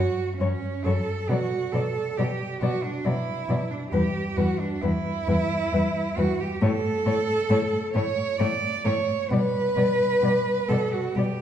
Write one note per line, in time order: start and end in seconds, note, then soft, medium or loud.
0.00 0.37 F#4 medium
0.38 0.48 F#2 medium
0.38 0.49 F#3 medium
0.38 0.86 C#4 medium
0.38 0.49 C#5 medium
0.85 0.93 F#2 medium
0.85 0.94 F#3 medium
0.85 1.30 A4 medium
0.85 0.93 C#5 medium
1.29 1.37 B2 medium
1.29 1.39 F#3 medium
1.29 1.74 F#4 medium
1.29 1.39 D5 medium
1.73 1.82 B2 medium
1.73 1.82 F#3 soft
1.73 2.19 A4 medium
1.73 1.82 D5 medium
2.17 2.27 B2 medium
2.17 2.26 F#3 medium
2.17 2.61 G4 medium
2.17 2.26 D5 medium
2.62 2.70 B2 medium
2.62 2.70 F#3 medium
2.62 2.85 F#4 medium
2.62 2.71 D5 medium
2.83 3.06 D4 medium
3.05 3.14 B2 medium
3.05 3.13 F#3 medium
3.05 3.72 E4 medium
3.05 3.13 D5 medium
3.49 3.57 B2 medium
3.49 3.57 F#3 medium
3.49 3.58 D5 medium
3.71 3.91 D4 medium
3.92 4.01 E2 medium
3.92 4.01 G3 medium
3.92 4.38 G4 medium
3.92 4.01 B4 medium
4.37 4.46 E2 medium
4.37 4.45 G3 medium
4.37 4.61 F#4 medium
4.37 4.45 B4 medium
4.60 4.83 D4 medium
4.81 4.91 E2 medium
4.81 4.90 G3 medium
4.81 6.18 E4 loud
4.81 4.91 B4 medium
5.27 5.36 E2 medium
5.27 5.35 G3 medium
5.27 5.35 B4 medium
5.73 5.81 E2 medium
5.73 5.81 G3 medium
5.73 5.81 B4 medium
6.17 6.25 E2 medium
6.17 6.26 G3 medium
6.17 6.42 F#4 medium
6.17 6.26 B4 medium
6.40 6.64 G4 medium
6.61 6.70 A2 medium
6.61 6.69 A3 medium
6.61 7.94 A4 loud
6.61 6.70 C#5 medium
7.06 7.14 A2 medium
7.06 7.14 A3 medium
7.06 7.14 C#5 medium
7.50 7.58 A2 medium
7.50 7.58 A3 medium
7.50 7.59 C#5 medium
7.94 8.03 A2 medium
7.94 8.02 A3 medium
7.94 8.41 C#5 loud
7.94 8.03 C#5 medium
8.39 8.48 A2 medium
8.39 8.47 A3 medium
8.39 8.47 C#5 medium
8.39 8.86 D5 loud
8.84 8.93 A2 medium
8.84 8.92 A3 medium
8.84 9.31 C#5 medium
8.84 8.95 C#5 medium
9.30 9.39 B2 medium
9.30 9.38 G3 medium
9.30 10.70 B4 loud
9.30 9.40 D5 medium
9.76 9.84 B2 medium
9.76 9.84 G3 medium
9.76 9.85 D5 medium
10.22 10.30 B2 medium
10.22 10.30 G3 medium
10.22 10.32 D5 medium
10.68 10.77 B2 medium
10.68 10.76 G3 medium
10.68 10.94 A4 medium
10.68 10.79 D5 medium
10.92 11.17 F#4 medium
11.15 11.24 B2 medium
11.15 11.23 G3 medium
11.15 11.41 G4 medium
11.15 11.26 D5 medium